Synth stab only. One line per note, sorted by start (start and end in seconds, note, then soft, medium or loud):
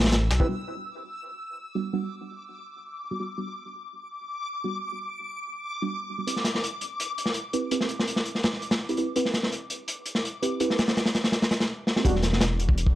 0.40 0.47 C4 medium
0.40 0.47 E4 medium
0.40 0.47 G4 medium
0.40 0.47 B4 medium
0.49 0.58 G3 medium
0.49 0.58 B3 medium
0.49 0.58 D4 medium
0.49 0.58 F#4 loud
1.75 1.91 G3 medium
1.75 1.91 B3 medium
1.75 1.91 D4 medium
1.75 1.91 F#4 medium
1.93 2.08 G3 medium
1.93 2.08 B3 medium
1.93 2.08 D4 medium
1.93 2.08 F#4 loud
3.11 3.18 G3 medium
3.11 3.18 B3 medium
3.11 3.18 D4 medium
3.11 3.18 F#4 loud
3.20 3.29 G3 medium
3.20 3.29 B3 medium
3.20 3.29 D4 medium
3.20 3.29 F#4 loud
3.38 3.47 G3 medium
3.38 3.47 B3 medium
3.38 3.47 D4 medium
3.38 3.47 F#4 loud
4.64 4.80 G3 medium
4.64 4.80 B3 medium
4.64 4.80 D4 medium
4.64 4.80 F#4 medium
5.82 6.16 G3 medium
5.82 6.16 B3 medium
5.82 6.16 D4 medium
5.82 6.16 F#4 loud
6.18 6.26 G3 medium
6.18 6.26 B3 medium
6.18 6.26 D4 medium
6.18 6.26 F#4 medium
6.27 6.37 C4 medium
6.27 6.37 E4 medium
6.27 6.37 G4 medium
6.27 6.37 B4 loud
7.53 7.69 C4 medium
7.53 7.69 E4 medium
7.53 7.69 G4 medium
7.53 7.69 B4 medium
7.71 7.87 C4 medium
7.71 7.87 E4 medium
7.71 7.87 G4 medium
7.71 7.87 B4 loud
8.89 8.97 C4 medium
8.89 8.97 E4 medium
8.89 8.97 G4 medium
8.89 8.97 B4 loud
8.98 9.08 C4 medium
8.98 9.08 E4 medium
8.98 9.08 G4 medium
8.98 9.08 B4 loud
9.16 9.26 C4 medium
9.16 9.26 E4 medium
9.16 9.26 G4 medium
9.16 9.26 B4 loud
10.42 10.58 C4 medium
10.42 10.58 E4 medium
10.42 10.58 G4 medium
10.42 10.58 B4 medium
10.60 10.76 C4 medium
10.60 10.76 E4 medium
10.60 10.76 G4 medium
10.60 10.76 B4 loud
11.96 12.04 C4 medium
11.96 12.04 E4 medium
11.96 12.04 G4 medium
11.96 12.04 B4 medium
12.05 12.15 G3 loud
12.05 12.15 B3 medium
12.05 12.15 D4 medium
12.05 12.15 F#4 loud